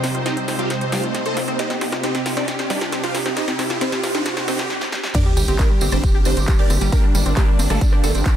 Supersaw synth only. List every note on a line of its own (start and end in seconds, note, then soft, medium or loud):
0.03 0.13 C5 medium
0.15 0.24 C5 medium
0.26 0.35 D#4 medium
0.26 0.35 G4 medium
0.26 0.35 C5 medium
0.26 0.35 D#5 medium
0.37 0.47 C5 medium
0.48 0.58 C5 medium
0.59 0.69 F4 medium
0.59 0.69 G4 medium
0.59 0.69 C5 medium
0.59 0.69 F5 medium
0.70 0.80 C5 medium
0.81 0.91 C5 medium
0.92 1.02 F4 medium
0.92 1.02 G4 medium
0.92 1.02 C5 medium
0.92 1.02 F5 medium
1.04 1.13 C5 medium
1.15 1.24 C5 medium
1.26 1.36 A4 medium
1.26 1.36 C5 medium
1.26 1.36 D#5 medium
1.26 1.36 A5 loud
1.37 1.47 C5 medium
1.48 1.58 C5 medium
1.59 1.69 D#4 medium
1.59 1.69 G4 medium
1.59 1.69 C5 medium
1.59 1.69 D#5 loud
1.70 1.80 G4 medium
1.81 1.91 G4 medium
1.93 2.02 G4 medium
2.04 2.13 C4 medium
2.04 2.13 D#4 medium
2.04 2.13 G4 medium
2.04 2.13 C5 loud
2.15 2.24 G4 medium
2.26 2.35 G4 medium
2.37 2.47 D4 medium
2.37 2.47 D#4 medium
2.37 2.47 G4 medium
2.37 2.47 D5 medium
2.48 2.58 G4 medium
2.59 2.69 G4 medium
2.70 2.80 D4 medium
2.70 2.80 D#4 medium
2.70 2.80 G4 medium
2.70 2.80 D5 medium
2.82 2.91 G4 medium
2.92 3.02 G4 medium
3.03 3.13 F4 medium
3.03 3.13 G4 medium
3.03 3.13 C5 medium
3.03 3.13 F5 medium
3.15 3.24 G4 medium
3.26 3.36 G4 medium
3.37 3.47 D#4 medium
3.37 3.47 G4 medium
3.37 3.47 C5 medium
3.37 3.47 D#5 loud
3.48 3.58 G4 medium
3.59 3.69 G4 medium
3.70 3.80 G4 medium
3.82 3.91 C4 medium
3.82 3.91 D#4 medium
3.82 3.91 G4 medium
3.82 3.91 C5 medium
3.93 4.02 G4 medium
4.04 4.13 G4 medium
4.15 4.24 D4 medium
4.15 4.24 D#4 medium
4.15 4.24 G4 medium
4.15 4.24 D5 medium
4.26 4.36 G4 medium
4.37 4.47 G4 medium
4.48 4.58 C4 medium
4.48 4.58 D#4 medium
4.48 4.58 G4 medium
4.48 4.58 C5 medium
4.59 4.69 G4 medium
5.15 5.24 D4 medium
5.15 5.24 G4 medium
5.15 5.24 A#4 medium
5.15 5.24 D5 loud
5.26 5.36 G4 medium
5.37 5.47 G4 medium
5.48 5.58 G4 medium
5.59 5.69 A#3 medium
5.59 5.69 D4 medium
5.59 5.69 G4 medium
5.59 5.69 A#4 loud
5.70 5.80 G4 medium
5.81 5.91 G4 medium
5.92 6.02 C4 medium
5.92 6.02 D4 medium
5.92 6.02 G4 medium
5.92 6.02 C5 medium
6.03 6.13 G4 medium
6.15 6.24 G4 medium
6.26 6.36 C4 medium
6.26 6.36 D4 medium
6.26 6.36 G4 medium
6.26 6.36 C5 medium
6.37 6.47 G4 medium
6.48 6.58 G4 medium
6.59 6.69 D4 medium
6.59 6.69 G4 medium
6.59 6.69 A#4 medium
6.59 6.69 D5 loud
6.70 6.80 G4 medium
6.81 6.91 G4 medium
6.92 7.02 A#3 medium
6.92 7.02 D4 medium
6.92 7.02 G4 medium
6.92 7.02 A#4 loud
7.03 7.13 D4 medium
7.15 7.24 D4 medium
7.26 7.35 D4 medium
7.37 7.47 G3 medium
7.37 7.47 A#3 medium
7.37 7.47 D4 medium
7.37 7.47 G4 loud
7.48 7.58 D4 medium
7.59 7.69 D4 medium
7.70 7.80 A3 medium
7.70 7.80 A#3 medium
7.70 7.80 D4 medium
7.70 7.80 A4 loud
7.81 7.91 D4 medium
7.92 8.02 D4 medium
8.03 8.13 A3 medium
8.03 8.13 A#3 medium
8.03 8.13 D4 medium
8.03 8.13 A4 medium
8.14 8.24 D4 medium
8.26 8.36 D4 medium